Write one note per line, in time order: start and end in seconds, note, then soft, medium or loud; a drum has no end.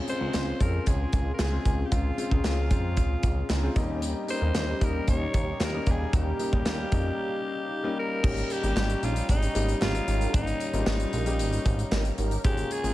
0.00 0.08 C4 medium
0.00 0.08 C#4 medium
0.00 3.72 C#4 medium
0.00 0.09 F4 medium
0.00 3.72 F4 medium
0.00 3.72 G#4 medium
0.00 3.72 F5 medium
0.00 1.90 C6 medium
0.07 0.17 G#3 medium
0.07 0.18 C4 medium
0.07 0.18 C#4 medium
0.07 0.18 F4 medium
0.07 0.58 C5 loud
0.07 closed hi-hat medium
0.20 0.30 C#2 medium
0.20 0.50 G#3 medium
0.20 0.50 C4 medium
0.20 0.50 C#4 medium
0.20 0.51 F4 medium
0.34 0.53 C#2 loud
0.34 snare loud
0.34 clap medium
0.34 closed hi-hat medium
0.60 0.80 F2 medium
0.60 1.29 G#3 medium
0.60 1.29 C4 medium
0.60 1.29 C#4 medium
0.60 1.29 F4 medium
0.60 0.89 A#4 medium
0.60 kick medium
0.60 closed hi-hat medium
0.86 1.06 C#2 loud
0.86 1.33 G#4 medium
0.86 kick medium
0.86 closed hi-hat medium
1.13 1.32 C#2 loud
1.13 kick medium
1.13 closed hi-hat medium
1.34 1.42 A#4 medium
1.39 1.58 C#2 loud
1.39 1.88 G#4 medium
1.39 snare loud
1.39 clap medium
1.39 closed hi-hat medium
1.52 1.82 G#3 medium
1.52 1.82 C4 medium
1.52 1.82 C#4 medium
1.52 1.82 F4 medium
1.65 1.85 C#2 medium
1.65 kick medium
1.65 closed hi-hat medium
1.86 1.94 G4 medium
1.91 2.11 C#2 loud
1.91 2.11 G#3 medium
1.91 2.11 C4 medium
1.91 2.12 C#4 medium
1.91 2.12 F4 medium
1.91 2.45 F4 medium
1.91 8.20 A#5 medium
1.91 kick loud
1.91 closed hi-hat medium
2.17 2.28 G#3 medium
2.17 2.28 C4 medium
2.17 2.28 C#4 medium
2.17 2.28 F4 medium
2.17 closed hi-hat medium
2.31 2.41 C#2 loud
2.31 2.60 G#3 medium
2.31 2.61 C4 medium
2.31 2.61 C#4 medium
2.31 2.61 G#4 medium
2.31 kick medium
2.44 2.72 C#2 loud
2.44 3.73 F4 medium
2.44 snare loud
2.44 clap medium
2.44 closed hi-hat medium
2.70 2.99 F2 medium
2.70 3.39 G#3 medium
2.70 3.39 C4 medium
2.70 3.39 C#4 medium
2.70 3.40 F4 medium
2.70 kick medium
2.70 closed hi-hat medium
2.97 3.16 C#2 loud
2.97 kick medium
2.97 closed hi-hat medium
3.23 3.43 C#2 loud
3.23 kick loud
3.23 closed hi-hat medium
3.50 3.69 C#2 loud
3.50 snare loud
3.50 clap medium
3.50 closed hi-hat medium
3.62 3.76 G#3 medium
3.62 3.76 C4 medium
3.62 3.74 C#4 medium
3.62 3.77 F4 medium
3.75 4.14 D#2 loud
3.75 4.18 G3 medium
3.75 4.18 A#3 medium
3.75 4.18 C#4 medium
3.75 7.93 C#4 medium
3.75 7.93 D#4 medium
3.75 4.19 D#4 loud
3.75 7.93 G4 medium
3.75 8.20 G4 medium
3.75 5.85 D#5 medium
3.75 kick loud
3.75 closed hi-hat medium
4.02 closed hi-hat loud
4.28 4.38 G3 medium
4.28 4.38 A#3 medium
4.28 4.39 C#4 medium
4.28 4.39 D#4 medium
4.28 4.86 C5 loud
4.28 closed hi-hat medium
4.41 4.51 D#2 medium
4.41 4.71 G3 medium
4.41 4.71 A#3 medium
4.41 4.71 C#4 medium
4.41 4.72 D#4 medium
4.55 4.74 D#2 loud
4.55 snare loud
4.55 clap medium
4.55 closed hi-hat medium
4.80 5.00 D#2 medium
4.80 5.50 G3 medium
4.80 5.50 A#3 medium
4.80 5.50 C#4 medium
4.80 5.50 D#4 medium
4.80 5.09 A#4 loud
4.80 kick medium
4.80 closed hi-hat medium
5.08 5.27 D#2 loud
5.08 5.65 C#5 loud
5.08 kick medium
5.08 closed hi-hat medium
5.34 5.53 D#2 loud
5.34 kick medium
5.34 closed hi-hat medium
5.60 5.80 D#2 loud
5.60 5.92 A#4 loud
5.60 snare loud
5.60 clap medium
5.60 closed hi-hat medium
5.73 6.03 G3 medium
5.73 6.03 A#3 medium
5.73 6.03 C#4 medium
5.73 6.03 D#4 medium
5.86 6.06 D#2 loud
5.86 8.21 F5 medium
5.86 kick medium
5.86 closed hi-hat medium
5.90 6.15 G#4 medium
6.13 6.32 D#2 loud
6.13 6.33 G3 medium
6.13 6.33 A#3 medium
6.13 6.33 C#4 medium
6.13 6.33 D#4 medium
6.13 7.95 G4 medium
6.13 kick loud
6.13 closed hi-hat medium
6.39 6.49 G3 medium
6.39 6.49 A#3 medium
6.39 6.50 C#4 medium
6.39 6.50 D#4 medium
6.39 closed hi-hat medium
6.53 6.62 D#2 medium
6.53 6.82 G3 medium
6.53 6.82 A#3 medium
6.53 6.82 C#4 medium
6.53 6.83 D#4 medium
6.53 kick medium
6.66 6.85 D#2 loud
6.66 snare loud
6.66 clap medium
6.66 closed hi-hat medium
6.91 7.11 F2 medium
6.91 7.60 G3 medium
6.91 7.61 A#3 medium
6.91 7.61 C#4 medium
6.91 7.61 D#4 loud
6.91 kick medium
6.91 closed hi-hat medium
7.83 8.13 G3 medium
7.83 8.13 A#3 medium
7.83 8.14 C#4 medium
7.83 8.14 D#4 medium
7.99 8.54 A#4 loud
8.23 8.43 G#1 loud
8.23 8.53 G3 medium
8.23 8.53 A#3 medium
8.23 8.53 C#4 medium
8.23 8.53 D#4 medium
8.23 12.41 G4 medium
8.23 8.53 G4 medium
8.23 12.94 C#5 medium
8.23 10.32 D#5 medium
8.23 12.41 A#5 medium
8.23 kick loud
8.23 crash loud
8.37 closed hi-hat medium
8.50 9.06 G4 loud
8.50 closed hi-hat medium
8.62 8.73 G#1 medium
8.62 9.31 G3 medium
8.62 9.31 A#3 medium
8.62 9.32 C#4 medium
8.62 9.32 D#4 medium
8.62 9.32 G4 medium
8.62 closed hi-hat medium
8.76 8.95 G#1 loud
8.76 snare loud
8.76 clap medium
8.76 tambourine medium
8.90 closed hi-hat medium
9.03 9.22 A#1 medium
9.03 9.14 C#4 medium
9.03 9.14 D#4 medium
9.03 9.30 F4 medium
9.03 9.14 G4 medium
9.03 closed hi-hat medium
9.16 closed hi-hat medium
9.29 9.48 G#1 loud
9.29 9.79 D#4 medium
9.29 kick medium
9.29 closed hi-hat medium
9.42 9.53 C#4 medium
9.42 9.53 D#4 medium
9.42 9.53 G4 medium
9.42 closed hi-hat medium
9.54 9.74 G#1 loud
9.54 10.13 G3 medium
9.54 10.14 A#3 medium
9.54 10.14 C#4 medium
9.54 10.14 D#4 medium
9.54 10.14 G4 medium
9.54 closed hi-hat medium
9.68 closed hi-hat soft
9.81 10.00 G#1 loud
9.81 9.93 C#4 medium
9.81 9.93 D#4 medium
9.81 10.31 F4 medium
9.81 9.93 G4 medium
9.81 snare loud
9.81 clap medium
9.81 tambourine medium
9.95 closed hi-hat medium
10.08 10.27 G#1 loud
10.08 10.42 D#4 loud
10.08 10.42 G4 medium
10.08 10.42 A#4 loud
10.08 closed hi-hat medium
10.21 closed hi-hat soft
10.33 10.53 G#1 loud
10.33 10.63 G3 medium
10.33 10.63 A#3 medium
10.33 10.63 C#4 medium
10.33 10.64 D#4 medium
10.33 10.84 D#4 loud
10.33 10.64 G4 medium
10.33 12.94 F5 medium
10.33 kick loud
10.33 closed hi-hat loud
10.47 closed hi-hat medium
10.60 closed hi-hat medium
10.73 10.83 G#1 loud
10.73 11.12 G3 medium
10.73 11.12 A#3 medium
10.73 11.13 C#4 medium
10.73 11.13 D#4 medium
10.73 10.80 F4 medium
10.73 closed hi-hat medium
10.80 11.16 G4 medium
10.86 11.05 G#1 loud
10.86 12.16 D#4 medium
10.86 snare loud
10.86 clap medium
10.86 tambourine medium
11.00 closed hi-hat medium
11.13 11.41 A#1 loud
11.13 11.25 D#4 medium
11.13 11.25 G4 medium
11.13 11.24 A#4 medium
11.13 closed hi-hat medium
11.26 12.04 G3 medium
11.26 12.04 A#3 medium
11.26 12.04 C#4 medium
11.26 12.04 D#4 medium
11.26 12.05 G4 medium
11.26 closed hi-hat medium
11.39 11.59 G#1 loud
11.39 closed hi-hat medium
11.52 11.64 D#4 medium
11.52 11.64 G4 medium
11.52 11.64 A#4 medium
11.52 closed hi-hat medium
11.65 11.85 G#1 loud
11.65 kick medium
11.65 closed hi-hat medium
11.79 closed hi-hat soft
11.92 12.11 G#1 loud
11.92 12.03 D#4 medium
11.92 12.03 G4 medium
11.92 12.03 A#4 medium
11.92 snare loud
11.92 clap medium
11.92 tambourine medium
12.05 closed hi-hat medium
12.18 12.37 G#1 loud
12.18 12.41 D#4 loud
12.18 12.41 G4 loud
12.18 12.41 A#4 loud
12.18 closed hi-hat medium
12.31 closed hi-hat medium
12.44 12.64 G#1 loud
12.44 12.74 G#3 medium
12.44 12.74 A#3 medium
12.44 12.74 C#4 medium
12.44 12.74 F4 medium
12.44 12.74 G4 loud
12.44 12.94 G#4 medium
12.44 12.74 G#4 medium
12.44 12.94 A#5 medium
12.44 kick loud
12.44 closed hi-hat loud
12.57 closed hi-hat medium
12.71 12.94 G#4 loud
12.71 closed hi-hat medium
12.83 12.93 G#1 loud
12.83 12.94 G#3 medium
12.83 12.94 A#3 medium
12.83 12.94 C#4 medium
12.83 12.94 F4 medium
12.83 12.94 G#4 medium
12.83 closed hi-hat medium